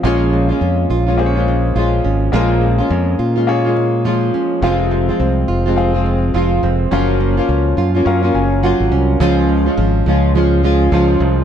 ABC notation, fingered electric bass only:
X:1
M:4/4
L:1/16
Q:"Swing 16ths" 1/4=105
K:Bbm
V:1 name="Fingered electric bass" clef=bass
B,,,4 F,,2 B,,,6 B,,,2 A,,,2 | B,,,4 F,,2 B,,8 z2 | F,,,4 C,,2 F,,,6 F,,,2 F,,,2 | G,,,4 D,,2 G,,2 G,,2 G,,,3 A,,, C,,2 |
D,,4 A,,,2 D,,6 D,,2 C,,2 |]